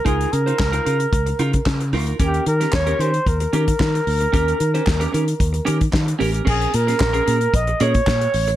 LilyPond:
<<
  \new Staff \with { instrumentName = "Flugelhorn" } { \time 4/4 \key bes \dorian \tempo 4 = 112 aes'8 bes'2. r8 | g'8 bes'8 des''8 c''8 bes'2~ | bes'2. r4 | aes'8 bes'4. ees''8 des''4. | }
  \new Staff \with { instrumentName = "Clean electric guitar" } { \time 4/4 \key bes \dorian <ees' f' bes'>8 r16 <ees' f' c''>16 r16 <ees' f' bes'>16 <ees' f' bes'>16 r8. <ees' f' bes'>16 r8. <ees' f' bes'>16 <ees' f' bes'>16 | <des' g' bes'>8 r16 <des' g' bes'>16 r16 <des' g' bes'>16 <des' g' bes'>16 r8. <des' g' bes'>16 r4 r16 | <des' g' bes'>8 r16 <des' g' c''>16 r16 <des' g' bes'>16 <des' g' bes'>16 r8. <des' g' bes'>16 r8. <des' g' bes'>16 <des' g' bes'>16 | <des' aes' bes'>8 r16 <des' aes' bes'>16 r16 <des' aes' bes'>16 <des' aes' bes'>16 r8. <des' aes' bes'>16 r4 r16 | }
  \new Staff \with { instrumentName = "Fingered electric bass" } { \clef bass \time 4/4 \key bes \dorian des,8 des8 des,8 des8 des,8 des8 des8 d,8 | ees,8 ees8 ees,8 ees8 ees,8 ees8 ees8 d,8 | ees,8 ees8 ees,8 ees8 ees,8 ees8 ees8 a,,8 | bes,,8 bes,8 bes,,8 bes,8 bes,,8 bes,8 bes,8 a,,8 | }
  \new DrumStaff \with { instrumentName = "Drums" } \drummode { \time 4/4 <hh bd>16 hh16 hh16 hh16 <hc bd sn>16 hh16 hh16 hh16 <hh bd>16 hh16 hh16 <hh bd>16 <hc bd sn>16 hh16 hho16 hh16 | <hh bd>16 hh16 hh16 <hh sn>16 <hc bd sn>16 hh16 hh16 hh16 <hh bd>16 hh16 hh16 <hh bd>16 <hc bd sn>16 hh16 hho16 hh16 | <hh bd>16 hh16 hh16 hh16 <hc bd sn>16 hh16 hh16 hh16 <hh bd>16 hh16 hh16 <hh bd>16 <hc bd sn>16 hh16 hho16 hh16 | <cymc bd>16 hh16 hh16 <hh sn>16 <hc bd sn>16 hh16 hh16 hh16 <hh bd>16 hh16 hh16 <hh bd>16 <hc bd sn>16 hh16 hho16 hh16 | }
>>